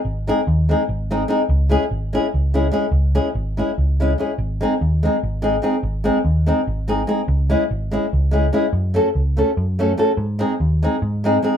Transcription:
X:1
M:7/8
L:1/8
Q:1/4=145
K:none
V:1 name="Nylon-string guitar"
z [^G,^B,^D^G] z [G,B,DG] z [G,B,DG] [G,B,DG] | z [^G,^CE^G] z [G,CEG] z [G,CEG] [G,CEG] | z [^G,^CE^G] z [G,CEG] z [G,CEG] [G,CEG] | z [^G,^B,^D^G] z [G,B,DG] z [G,B,DG] [G,B,DG] |
z [^G,^B,^D^G] z [G,B,DG] z [G,B,DG] [G,B,DG] | z [^G,^CE^G] z [G,CEG] z [G,CEG] [G,CEG] | z [A,^C^FA] z [A,CFA] z [A,CFA] [A,CFA] | z [^G,^B,^D^G] z [G,B,DG] z [G,B,DG] [G,B,DG] |]
V:2 name="Picked electric bass" clef=bass
^G,,,2 ^D,,2 G,,,3 | ^C,,2 ^G,,,2 C,,3 | ^C,,2 ^G,,,2 C,,3 | ^G,,,2 ^D,,2 G,,,3 |
^G,,,2 ^D,,2 G,,,3 | ^C,,2 ^G,,,2 C,,3 | ^F,,2 ^C,,2 F,,3 | ^G,,2 ^D,,2 G,,3 |]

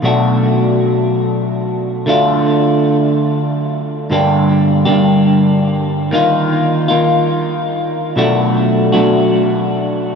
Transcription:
X:1
M:4/4
L:1/8
Q:1/4=118
K:Gm
V:1 name="Clean electric guitar"
[=B,,^F,A,D^F]8 | [D,A,DF]8 | [G,,D,G,B,DG]3 [G,,D,G,B,DG]4- [G,,D,G,B,DG] | [E,B,EF]3 [E,B,EF]4- [E,B,EF] |
[=B,,^F,A,D^F]3 [B,,F,A,DF]4- [B,,F,A,DF] |]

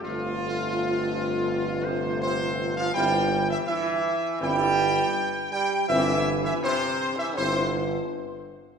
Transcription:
X:1
M:4/4
L:1/16
Q:1/4=82
K:Clyd
V:1 name="Trumpet section"
=F8- F2 c2 c3 =f | g3 e e4 g6 g2 | e3 e c3 e c2 z6 |]
V:2 name="French horn section"
[A,=F]16 | [CE]2 z6 [CE]2 z6 | [CE]2 z6 [CE]2 z6 |]
V:3 name="Trombone section" clef=bass
=F,,8- F,,2 C,2 C,3 =F, | G,3 E, E,4 G,6 G,2 | E,3 E, C,3 E, C,2 z6 |]
V:4 name="Tuba" clef=bass
G,,,16 | G,,,4 z4 G,,,4 z4 | G,,,4 z4 G,,,4 z4 |]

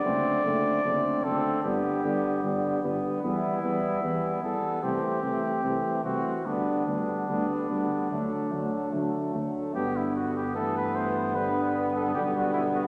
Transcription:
X:1
M:4/4
L:1/16
Q:1/4=75
K:G
V:1 name="Cornet"
d6 A2 G6 z2 | E6 A2 G6 F2 | D12- D2 z2 | G E F G A B c2 B3 A G F E F |]
V:2 name="Flugelhorn"
C2 C2 C2 C2 B,2 B,2 B,2 B,2 | B,2 B,2 B,2 B,2 C2 C2 C2 C2 | B,2 B,2 B,2 B,2 A,2 A,2 A,2 A,2 | B,16 |]
V:3 name="French horn" clef=bass
A,2 A,2 A,2 A,2 G,2 G,2 G,2 G,2 | G,2 G,2 G,2 G,2 A,2 A,2 A,2 A,2 | G,2 G,2 G,2 G,2 F,2 F,2 F,2 F,2 | B,4 A,4 G,4 G,4 |]
V:4 name="Trombone" clef=bass
D,2 D,2 D,2 D,2 D,2 D,2 D,2 D,2 | E,2 E,2 E,2 E,2 E,2 E,2 E,2 E,2 | D,2 D,2 D,2 D,2 D,2 D,2 D,2 D,2 | D,4 E,4 D,4 D,4 |]
V:5 name="Tuba" clef=bass
F,,,2 F,,,2 F,,,2 F,,,2 G,,,2 G,,,2 G,,,2 G,,,2 | E,,2 E,,2 E,,2 E,,2 C,,2 C,,2 C,,2 C,,2 | D,,2 D,,2 D,,2 D,,2 D,,2 D,,2 D,,2 D,,2 | G,,12 B,,,4 |]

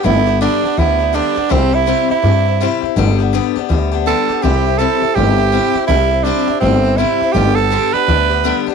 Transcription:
X:1
M:4/4
L:1/8
Q:"Swing" 1/4=164
K:G
V:1 name="Tenor saxophone"
E2 D2 E2 D2 | C E2 E4 z | z6 A2 | G2 A2 G4 |
E2 D2 C2 E2 | G A2 B4 z |]
V:2 name="Steel-string acoustic guitar"
[G,,D,G,B,DG] [G,B,DG] [G,,D,G,B,DG] [G,B,DG] [G,B,DG] [G,B,DG] [G,,D,G,B,DG] [G,B,DG] | [C,G,CEG] [CEG] [C,G,CEG] [CEG] [G,CEG] [CEG] [C,G,CEG] [CEG] | [G,,D,G,B,DG] [G,B,DG] [G,,D,G,B,DG] [G,B,DG] [G,B,DG] [G,B,DG] [G,,D,G,B,DG] [G,B,DG] | [C,G,CEG] [CEG] [C,G,CEG] [CEG] [G,CEG] [CEG] [C,G,CEG] [CEG] |
[C,G,CEG] [CEG] [C,G,CEG] [CEG] [G,CEG] [CEG] [C,G,CEG] [CEG] | [G,,D,G,B,DG] [G,B,DG] [G,,D,G,B,DG] [G,B,DG] [G,B,DG] [G,B,DG] [G,,D,G,B,DG] [G,B,DG] |]
V:3 name="Upright bass" clef=bass
G,,,3 z D,,3 z | C,,3 z G,,3 z | G,,,3 z D,,3 z | C,,3 z G,,,3 z |
C,,3 z G,,,3 z | G,,,3 z D,,3 z |]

